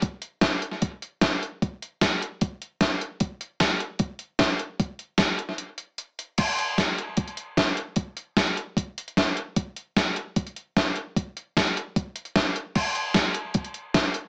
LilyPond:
\new DrumStaff \with { instrumentName = "Drums" } \drummode { \time 4/4 \tempo 4 = 151 <hh bd>8 hh8 <hh bd sn>8 hh16 sn16 <hh bd>8 hh8 <hh bd sn>8 hh8 | <hh bd>8 hh8 <hh bd sn>8 hh8 <hh bd>8 hh8 <hh bd sn>8 hh8 | <hh bd>8 hh8 <hh bd sn>8 hh8 <hh bd>8 hh8 <hh bd sn>8 hh8 | <hh bd>8 hh8 <hh bd sn>8 hh16 sn16 hh8 hh8 hh8 hh8 |
<cymc hh bd>8 hh8 <hh bd sn>8 hh8 <hh bd>16 hh16 hh8 <hh bd sn>8 hh8 | <hh bd>8 hh8 <hh bd sn>16 hh16 hh8 <hh bd>8 hh16 hh16 <hh bd sn>8 hh8 | <hh bd>8 hh8 <hh bd sn>8 hh8 <hh bd>16 hh16 hh8 <hh bd sn>8 hh8 | <hh bd>8 hh8 <hh bd sn>16 hh16 hh8 <hh bd>8 hh16 hh16 <hh bd sn>8 hh8 |
<cymc bd>8 hh8 <hh bd sn>8 hh8 <hh bd>16 hh16 hh8 <hh bd sn>8 hh8 | }